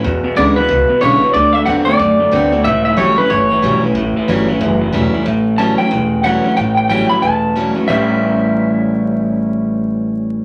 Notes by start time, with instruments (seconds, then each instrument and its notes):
0.04 clean electric guitar E2 B2, steel-string acoustic guitar E2, upright bass E2
0.24 clean electric guitar E2 B2, muted upright bass stroke
0.36 upright bass D2, clean electric guitar E2 C#3 D5, steel-string acoustic guitar D3 G#3 B3 E4
0.56 clean electric guitar E2 B2 B4, steel-string acoustic guitar B3 E4
0.69 upright bass C#2, clean electric guitar E2 B2, steel-string acoustic guitar B2
0.89 clean electric guitar E2 B2
1.01 upright bass B1, clean electric guitar E2 C#3 C#5, steel-string acoustic guitar D3 G#3 B3 E4
1.21 clean electric guitar E2 B2, steel-string acoustic guitar B3 E4, muted upright bass stroke
1.33 upright bass D2, steel-string acoustic guitar D3, clean electric guitar D3 A3 D5
1.53 clean electric guitar D3 A3 E5
1.66 upright bass E2, steel-string acoustic guitar D3 A3 C4 F#4, clean electric guitar D3 B3 F#5
1.85 clean electric guitar D3 A3 D5, steel-string acoustic guitar C4 F#4
2.00 upright bass F#2, clean electric guitar D3 A3
2.19 clean electric guitar D3 A3
2.31 upright bass D2, steel-string acoustic guitar D3 A3 C4 F#4, clean electric guitar D3 B3
2.52 clean electric guitar D3 A3, steel-string acoustic guitar C4 F#4
2.64 upright bass C#2, steel-string acoustic guitar A2, clean electric guitar A2 E3 E5
2.85 clean electric guitar A2 E3 E5
2.96 upright bass A1, clean electric guitar A2 F#3 C#5, steel-string acoustic guitar E3 G3 C#4 E4
3.18 clean electric guitar A2 E3 B4, steel-string acoustic guitar C#4 E4
3.30 upright bass G1, steel-string acoustic guitar E2, clean electric guitar A2 E3 C#5
3.51 clean electric guitar A2 E3
3.62 upright bass B1, clean electric guitar A2 F#3, steel-string acoustic guitar E3 G3 C#4 E4
3.82 clean electric guitar A2 E3, steel-string acoustic guitar C#4 E4
3.95 upright bass A1, steel-string acoustic guitar A2, clean electric guitar A2 E3
4.16 clean electric guitar A2 E3, muted upright bass stroke
4.28 upright bass G1, clean electric guitar A2 F#3, steel-string acoustic guitar E3 G3 C#4 E4
4.48 clean electric guitar A2 E3, steel-string acoustic guitar C#4 E4
4.60 upright bass F#1, steel-string acoustic guitar E2, clean electric guitar A2 E3
4.81 clean electric guitar A2 E3
4.92 upright bass E1, clean electric guitar A2 F#3, steel-string acoustic guitar E3 G3 C#4 E4
5.14 clean electric guitar A2 E3, muted upright bass stroke
5.26 upright bass A1, steel-string acoustic guitar A2, clean electric guitar A2 E3
5.58 clean electric guitar A2 F#3 A5, steel-string acoustic guitar E3 G3 C#4 E4
5.78 clean electric guitar A2 F#3 G5, steel-string acoustic guitar C#4 E4
5.91 upright bass E1, steel-string acoustic guitar E2, clean electric guitar A2 E3
6.24 clean electric guitar A2 F#3 F#5, steel-string acoustic guitar E3 G3 C#4 E4
6.44 clean electric guitar A2 F#3, steel-string acoustic guitar C#4 E4
6.56 upright bass A1, clean electric guitar A2 E3 G5, steel-string acoustic guitar A2
6.77 clean electric guitar G5
6.89 clean electric guitar A2 F#3 G5, steel-string acoustic guitar E3 G3 C#4 E4
7.09 clean electric guitar A2 F#3 B5, steel-string acoustic guitar C#4 E4
7.22 upright bass E1, steel-string acoustic guitar E2, clean electric guitar A2 E3 A5
7.56 clean electric guitar A2 F#3, steel-string acoustic guitar E3 G3 C#4 E4
7.76 clean electric guitar A2 F#3, steel-string acoustic guitar C#4 E4
7.87 upright bass A1, clean electric guitar A2 E3 G3 C#4 E5, steel-string acoustic guitar A2 E3 G3 C#4 E4
7.91 clean electric guitar E4